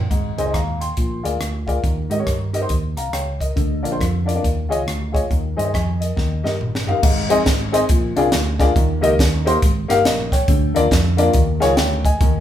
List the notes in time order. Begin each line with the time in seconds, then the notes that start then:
0.10 G#1 G#2, kick, closed hi-hat
0.37 C#2 D#4 G#4 C5 D#5, closed hi-hat
0.45 D#4 G#4 C5 D#5
0.53 D#2 F5 A#5, kick, cross-stick, closed hi-hat
0.81 G5 C6, closed hi-hat
0.97 A#1 A#2, kick, closed hi-hat
1.23 D2 F4 G#4 A#4 D5, closed hi-hat
1.40 D2, cross-stick, closed hi-hat
1.67 F4 G#4 A#4 D5, kick, closed hi-hat
1.83 D#2 D#3, kick, closed hi-hat
2.10 G#2 D#4 G4 A#4 D#5, closed hi-hat
2.18 D#4 G4 A#4 C#5
2.27 G2, kick, cross-stick, closed hi-hat
2.53 D#4 G4 A#4 D#5, closed hi-hat
2.61 D#4 G4 A#4 C5
2.69 D#2, kick, closed hi-hat
2.97 C2 F5 A#5, cross-stick, closed hi-hat
3.13 C#2 C#5 G5, cross-stick, closed hi-hat
3.40 A#4 D#5, kick, cross-stick, closed hi-hat
3.56 D2 D3, kick, closed hi-hat
3.83 A#1 D4 F4 A#4 D5, closed hi-hat
3.91 D4 F4 A#4 C5
4.00 F2, kick, cross-stick, closed hi-hat
4.25 D4 F4 A#4 D5, closed hi-hat
4.35 D4 F4 A#4 D5
4.43 D#2 D#3, kick, closed hi-hat
4.69 C#2 F4 G#4 C#5 D#5, closed hi-hat
4.87 D2, cross-stick, closed hi-hat
5.12 F4 G#4 C#5 D#5, kick, cross-stick
5.16 closed hi-hat
5.30 D#2 D#3, kick, closed hi-hat
5.56 G2 D#4 G#4 C5 D#5, closed hi-hat
5.64 D#4 G#4 C5 D#5
5.73 F2 G#5, kick, cross-stick, closed hi-hat
6.00 A#4 D#5, closed hi-hat
6.16 D#2 D#3, kick, snare
6.43 G2 D#4 G4 A#4 D#5, snare
6.60 G1, mid tom
6.75 snare
6.87 D#4 G4 A#4 F5, floor tom
7.03 G#1 G#2, kick, crash
7.29 A#1 C4 D#4 G#4 C5 D#5, closed hi-hat
7.46 G#1, kick, snare, closed hi-hat
7.72 C4 D#4 G#4 C5 D#5, closed hi-hat
7.89 A#1 A#2, kick, closed hi-hat
8.16 C2 D4 F4 G#4 A#4 D5, closed hi-hat
8.32 D2, snare, closed hi-hat
8.59 D4 F4 G#4 A#4 D5, kick, snare, closed hi-hat
8.76 D#2 D#3, kick, closed hi-hat
9.01 C#2 A#3 D#4 G4 A#4 D#5, closed hi-hat
9.19 D#2, kick, snare, closed hi-hat
9.45 A#3 D#4 G4 A#4 C5, closed hi-hat
9.62 G#1, kick, closed hi-hat
9.88 G1 A#3 D#4 G4 A#4 F5, snare, closed hi-hat
10.05 A#1 A#4 D#5, snare, closed hi-hat
10.32 C#5 G5, kick, snare, closed hi-hat
10.48 D2 D3, kick, closed hi-hat
10.74 D#2 A#3 D4 F4 A#4 D5, closed hi-hat
10.91 F2, kick, snare, closed hi-hat
11.17 A#3 D4 F4 A#4 D5, closed hi-hat
11.33 D#2 D#3, kick, closed hi-hat
11.60 C#2 D#4 F4 G#4 A#4 C#5, snare, closed hi-hat
11.76 D2 C#5 G5, snare, closed hi-hat
12.05 D#5 G#5, kick, closed hi-hat
12.21 D#2 D#3, kick, closed hi-hat